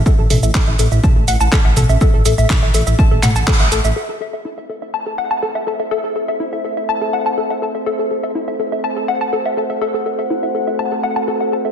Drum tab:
HH |--o---o---o---o-|--o---o---o---o-|----------------|----------------|
SH |x-xxx-xxx-xxx-xx|x-xx--xxx-xx--xx|----------------|----------------|
CP |----x-------x---|----x-----x-x---|----------------|----------------|
T2 |--o-----o-----o-|----o-----o-----|----------------|----------------|
BD |o---o---o---o---|o---o---o---o---|----------------|----------------|

HH |----------------|----------------|
SH |----------------|----------------|
CP |----------------|----------------|
T2 |----------------|----------------|
BD |----------------|----------------|